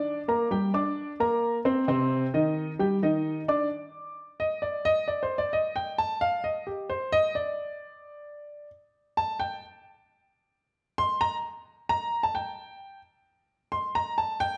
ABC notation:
X:1
M:4/4
L:1/16
Q:1/4=132
K:Cdor
V:1 name="Grand piano"
[Ddd']2 [B,Bb]2 [G,Gg]2 [Ddd']4 [B,Bb]4 [Ccc']2 | [C,Cc]4 [E,Ee]4 [G,Gg]2 [E,Ee]4 [Ddd']2 | z6 e2 d2 e2 (3d2 c2 d2 | e2 g2 a2 f2 e2 G2 c2 e2 |
d12 z4 | a2 g2 z12 | c'2 b2 z4 b3 a g4- | g2 z6 c'2 b2 a2 g2 |]